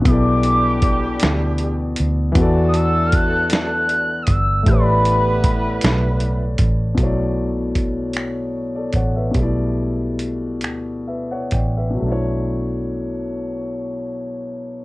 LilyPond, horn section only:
\new Staff \with { instrumentName = "Horn section" } { \time 6/8 \key b \minor \tempo 4. = 52 <e g d' g'>2~ <e g d' g'>8 r8 | <fis a d' a'>2~ <fis a d' a'>8 r8 | <g b e' b'>2~ <g b e' b'>8 r8 | r2. |
r2. | r2. | }